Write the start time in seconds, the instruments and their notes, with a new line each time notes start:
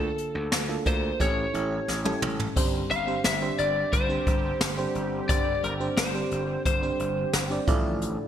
Already playing: fm electric piano D3 A#3 D4 F4 A4, lead electric guitar A4
0.18 closed hi-hat
0.35 slap bass D2
0.52 slap bass D2, snare, closed hi-hat
0.68 fm electric piano A#3 D4 F4 A4
0.85 slap bass D2, fm electric piano A#3 D4 F4 A#4, lead electric guitar C5, kick, closed hi-hat
1.20 slap bass A1, fm electric piano A2 C#4 E4 G4 A4, lead electric guitar C#5, kick, closed hi-hat
1.53 slap bass A1, fm electric piano C#4 E4 G4 A4, closed hi-hat
1.88 slap bass A1, snare
2.05 fm electric piano C#4 E4 G4 A4, high tom
2.22 slap bass A1, mid tom
2.39 floor tom
2.56 slap bass G1, fm electric piano G2 C4 D4 G4 C5, analog synth pad D3 G3 C4 G4, kick, crash
2.91 slap bass G1, lead electric guitar F5, closed hi-hat
3.07 fm electric piano C4 D4 G4 C5
3.24 slap bass G1, lead electric guitar E5, snare, closed hi-hat
3.41 fm electric piano C4 D4 G4 C5
3.58 slap bass G1, lead electric guitar D5, closed hi-hat
3.93 slap bass G1, lead electric guitar C5, kick, closed hi-hat
4.09 fm electric piano C4 D4 G4 C5
4.27 slap bass G1, kick, closed hi-hat
4.61 slap bass G1, snare, closed hi-hat
4.77 fm electric piano C4 D4 G4 C5
4.95 slap bass G1, closed hi-hat
5.29 slap bass G1, fm electric piano G2 C4 D4 G4 C5, lead electric guitar D5, kick, closed hi-hat
5.63 slap bass G1, lead electric guitar A#4, closed hi-hat
5.80 fm electric piano C4 D4 G4 C5
5.97 slap bass G1, lead electric guitar C5, snare, closed hi-hat
6.14 fm electric piano C4 D4 G4 C5
6.31 slap bass G1, closed hi-hat
6.65 slap bass G1, lead electric guitar C5, kick, closed hi-hat
6.82 fm electric piano C4 D4 G4 C5
7.00 slap bass G1, closed hi-hat
7.33 slap bass G1, snare, closed hi-hat
7.50 fm electric piano C4 D4 G4 D5
7.67 slap bass A1, fm electric piano A2 E4 F4 A4 D5, analog synth pad D3 F3 A3 D4, kick, closed hi-hat
8.02 closed hi-hat